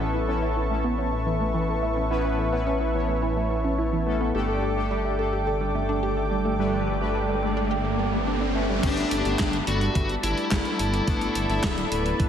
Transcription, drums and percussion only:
8.83 kick loud
8.83 closed hi-hat medium
8.83 crash loud
8.97 closed hi-hat soft
9.11 closed hi-hat loud
9.25 closed hi-hat soft
9.39 kick loud
9.39 snare loud
9.39 clap loud
9.39 closed hi-hat medium
9.53 closed hi-hat soft
9.67 closed hi-hat loud
9.81 closed hi-hat soft
9.95 kick loud
9.95 closed hi-hat medium
10.09 closed hi-hat soft
10.23 closed hi-hat medium
10.38 closed hi-hat soft
10.51 kick loud
10.51 snare loud
10.51 clap loud
10.51 closed hi-hat medium
10.65 closed hi-hat soft
10.79 closed hi-hat loud
10.94 closed hi-hat soft
11.08 kick loud
11.08 closed hi-hat medium
11.21 closed hi-hat soft
11.35 closed hi-hat loud
11.50 closed hi-hat soft
11.64 kick loud
11.64 snare loud
11.64 clap loud
11.64 closed hi-hat medium
11.78 closed hi-hat soft
11.92 closed hi-hat loud
12.06 closed hi-hat soft
12.20 kick loud
12.20 closed hi-hat medium

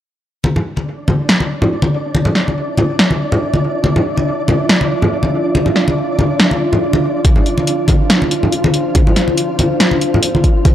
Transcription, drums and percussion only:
0.44 high conga medium
0.56 low conga medium
0.77 high conga medium
1.08 high conga medium
1.08 low conga medium
1.29 snare loud
1.40 high conga medium
1.62 low conga medium
1.82 high conga medium
2.15 high conga medium
2.25 low conga medium
2.35 snare medium
2.48 high conga medium
2.78 high conga medium
2.78 low conga medium
2.99 snare loud
3.11 high conga medium
3.32 low conga medium
3.54 high conga medium
3.84 high conga medium
3.96 low conga medium
4.17 high conga medium
4.48 high conga medium
4.48 low conga medium
4.69 snare loud
4.81 high conga medium
5.02 low conga medium
5.23 high conga medium
5.55 high conga medium
5.66 low conga medium
5.76 snare medium
5.88 high conga medium
6.19 high conga medium
6.19 low conga medium
6.40 snare loud
6.51 high conga medium
6.73 low conga medium
6.93 high conga medium
7.25 kick loud
7.25 closed hi-hat medium
7.25 high conga medium
7.36 low conga medium
7.46 closed hi-hat soft
7.58 high conga medium
7.67 closed hi-hat medium
7.88 kick medium
7.88 closed hi-hat soft
7.88 high conga medium
7.88 low conga medium
8.10 snare loud
8.10 closed hi-hat medium
8.22 high conga medium
8.31 closed hi-hat soft
8.43 low conga medium
8.52 closed hi-hat medium
8.64 high conga loud
8.74 closed hi-hat soft
8.95 kick loud
8.95 closed hi-hat medium
8.95 high conga medium
9.07 low conga medium
9.16 snare medium
9.16 closed hi-hat soft
9.28 high conga medium
9.38 closed hi-hat medium
9.59 closed hi-hat medium
9.59 high conga medium
9.59 low conga medium
9.80 snare loud
9.80 closed hi-hat medium
9.91 high conga medium
10.01 closed hi-hat soft
10.14 low conga medium
10.23 closed hi-hat medium
10.35 high conga medium
10.44 kick medium
10.44 closed hi-hat soft
10.65 kick loud
10.65 closed hi-hat medium
10.65 high conga medium

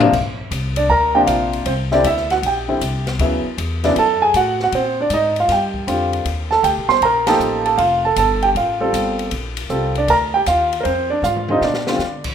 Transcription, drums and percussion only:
0.00 floor tom loud
0.13 kick medium
0.13 crash medium
0.51 kick soft
0.51 hi-hat pedal soft
0.51 ride medium
0.76 ride medium
1.27 kick soft
1.27 hi-hat pedal soft
1.27 ride medium
1.53 ride soft
1.66 kick soft
1.66 ride medium
1.91 snare soft
2.04 kick soft
2.04 hi-hat pedal medium
2.04 ride medium
2.17 snare soft
2.30 snare soft
2.30 ride soft
2.43 kick soft
2.43 ride medium
2.81 kick soft
2.81 hi-hat pedal soft
2.81 ride medium
3.07 snare medium
3.07 ride soft
3.19 kick soft
3.19 ride medium
3.58 kick soft
3.58 hi-hat pedal medium
3.58 ride medium
3.84 snare soft
3.84 ride soft
3.96 kick soft
3.96 ride medium
4.34 kick soft
4.34 hi-hat pedal soft
4.34 ride medium
4.60 snare soft
4.72 kick soft
4.72 ride medium
5.10 kick soft
5.10 hi-hat pedal medium
5.10 ride medium
5.36 ride soft
5.49 kick soft
5.49 snare soft
5.49 ride medium
5.74 kick medium
5.88 hi-hat pedal soft
5.88 ride medium
6.13 ride soft
6.25 kick soft
6.25 ride medium
6.51 snare soft
6.63 kick soft
6.63 hi-hat pedal soft
6.63 ride medium
6.89 snare medium
7.01 kick soft
7.01 ride medium
7.27 snare medium
7.27 ride medium
7.40 hi-hat pedal soft
7.66 ride soft
7.78 kick soft
7.78 ride medium
8.16 kick soft
8.16 hi-hat pedal medium
8.16 ride medium
8.42 ride soft
8.55 kick soft
8.55 ride soft
8.93 kick soft
8.93 hi-hat pedal medium
8.93 ride medium
9.19 ride soft
9.31 kick soft
9.31 ride medium
9.57 ride medium
9.70 kick soft
9.70 hi-hat pedal soft
9.95 ride soft
10.08 kick soft
10.08 ride medium
10.46 kick soft
10.46 hi-hat pedal medium
10.46 ride medium
10.73 ride soft
10.85 kick soft
10.85 ride medium
11.24 hi-hat pedal medium
11.24 mid tom soft
11.36 mid tom soft
11.48 mid tom medium
11.62 snare medium
11.74 snare medium
11.87 snare medium
11.99 snare soft
11.99 hi-hat pedal soft
12.24 kick medium
12.24 crash medium

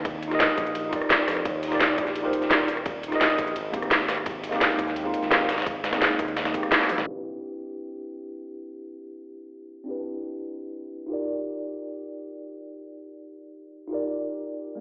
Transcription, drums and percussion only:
0.05 kick loud
0.05 closed hi-hat medium
0.05 ride medium
0.23 closed hi-hat medium
0.23 ride medium
0.23 cabasa medium
0.31 cross-stick soft
0.31 snare soft
0.31 closed hi-hat soft
0.31 cabasa soft
0.40 snare loud
0.40 closed hi-hat medium
0.40 ride medium
0.49 snare soft
0.49 closed hi-hat soft
0.58 kick loud
0.58 closed hi-hat medium
0.58 ride medium
0.58 cabasa medium
0.66 closed hi-hat soft
0.66 cabasa soft
0.75 closed hi-hat medium
0.75 ride medium
0.93 kick loud
0.93 closed hi-hat medium
0.93 ride medium
0.93 cabasa medium
1.02 cross-stick soft
1.02 cabasa soft
1.10 snare loud
1.10 closed hi-hat medium
1.10 ride medium
1.19 snare soft
1.28 cross-stick medium
1.28 snare medium
1.28 closed hi-hat medium
1.28 open hi-hat medium
1.28 ride medium
1.28 cabasa medium
1.37 cross-stick soft
1.37 closed hi-hat soft
1.45 kick loud
1.45 closed hi-hat medium
1.45 ride medium
1.63 closed hi-hat medium
1.63 open hi-hat medium
1.63 ride medium
1.63 cabasa medium
1.72 cross-stick soft
1.72 snare medium
1.72 closed hi-hat soft
1.72 cabasa soft
1.80 snare loud
1.80 closed hi-hat medium
1.80 ride medium
1.89 snare soft
1.89 closed hi-hat soft
1.98 kick loud
1.98 closed hi-hat medium
1.98 ride medium
1.98 cabasa medium
2.07 snare soft
2.07 cabasa soft
2.16 closed hi-hat medium
2.16 ride medium
2.33 closed hi-hat medium
2.33 ride medium
2.33 cabasa medium
2.42 snare soft
2.42 cabasa soft
2.51 snare loud
2.51 closed hi-hat medium
2.51 ride medium
2.68 closed hi-hat medium
2.68 open hi-hat medium
2.68 ride medium
2.68 cabasa medium
2.77 cross-stick soft
2.77 closed hi-hat soft
2.86 kick loud
2.86 closed hi-hat medium
2.86 ride medium
3.03 closed hi-hat medium
3.03 ride medium
3.03 cabasa medium
3.12 cross-stick soft
3.12 snare soft
3.12 closed hi-hat soft
3.12 cabasa soft
3.21 snare loud
3.21 closed hi-hat medium
3.21 ride medium
3.30 snare soft
3.30 closed hi-hat soft
3.38 kick loud
3.38 closed hi-hat medium
3.38 ride medium
3.38 cabasa medium
3.47 closed hi-hat soft
3.47 cabasa soft
3.56 closed hi-hat medium
3.56 closed hi-hat loud
3.56 ride medium
3.73 kick loud
3.73 closed hi-hat medium
3.73 ride medium
3.73 cabasa medium
3.82 cross-stick soft
3.82 cabasa soft
3.91 snare loud
3.91 closed hi-hat medium
3.91 closed hi-hat loud
3.91 ride medium
4.00 snare soft
4.08 cross-stick medium
4.08 snare loud
4.08 closed hi-hat medium
4.08 open hi-hat medium
4.08 ride medium
4.08 cabasa medium
4.17 cross-stick soft
4.17 closed hi-hat soft
4.26 kick loud
4.26 closed hi-hat medium
4.26 closed hi-hat loud
4.26 ride medium
4.43 closed hi-hat medium
4.43 open hi-hat medium
4.43 ride medium
4.43 cabasa medium
4.52 cross-stick soft
4.52 snare medium
4.52 closed hi-hat soft
4.52 cabasa soft
4.61 snare loud
4.61 closed hi-hat medium
4.61 ride medium
4.70 snare soft
4.70 closed hi-hat soft
4.79 kick loud
4.79 closed hi-hat medium
4.79 ride medium
4.79 cabasa medium
4.87 snare soft
4.87 cabasa soft
4.96 closed hi-hat medium
4.96 closed hi-hat loud
4.96 ride medium
5.14 closed hi-hat medium
5.14 ride medium
5.14 cabasa medium
5.23 snare soft
5.23 cabasa soft
5.31 snare loud
5.31 closed hi-hat medium
5.31 closed hi-hat loud
5.31 ride medium
5.49 snare loud
5.49 closed hi-hat medium
5.49 open hi-hat medium
5.49 ride medium
5.49 cabasa medium
5.58 cross-stick soft
5.58 snare medium
5.58 closed hi-hat medium
5.58 closed hi-hat soft
5.62 snare medium
5.62 closed hi-hat medium
5.66 kick loud
5.66 closed hi-hat medium
5.66 closed hi-hat loud
5.66 ride medium
5.84 snare loud
5.84 closed hi-hat medium
5.84 ride medium
5.84 cabasa medium
5.93 cross-stick soft
5.93 snare loud
5.93 closed hi-hat medium
5.93 closed hi-hat soft
5.93 cabasa soft
6.01 snare loud
6.01 closed hi-hat medium
6.01 closed hi-hat loud
6.01 ride medium
6.10 snare soft
6.10 closed hi-hat soft
6.19 kick loud
6.19 closed hi-hat medium
6.19 ride medium
6.19 cabasa medium
6.28 closed hi-hat soft
6.28 cabasa soft
6.37 snare loud
6.37 closed hi-hat medium
6.37 closed hi-hat loud
6.37 ride medium
6.45 snare loud
6.45 closed hi-hat medium
6.54 kick loud
6.54 closed hi-hat medium
6.54 ride medium
6.54 cabasa medium
6.63 cross-stick soft
6.63 cabasa soft
6.72 snare loud
6.72 closed hi-hat medium
6.72 closed hi-hat loud
6.72 ride medium
6.81 snare soft
6.81 snare medium
6.89 closed hi-hat medium
6.89 open hi-hat medium
6.89 mid tom medium
6.89 ride medium
6.89 cabasa medium
6.98 snare loud
6.98 closed hi-hat medium
6.98 closed hi-hat soft
6.98 mid tom medium

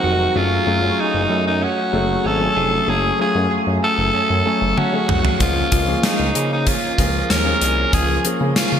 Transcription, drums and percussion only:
4.78 high tom medium
5.09 mid tom medium
5.25 floor tom medium
5.40 kick loud
5.40 closed hi-hat medium
5.72 kick loud
5.72 closed hi-hat medium
6.03 snare loud
6.03 closed hi-hat medium
6.35 closed hi-hat medium
6.67 kick medium
6.67 closed hi-hat medium
6.98 kick medium
6.98 closed hi-hat medium
7.30 snare medium
7.30 closed hi-hat medium
7.62 closed hi-hat medium
7.93 kick loud
7.93 closed hi-hat medium
8.25 closed hi-hat medium
8.56 snare loud
8.56 closed hi-hat medium

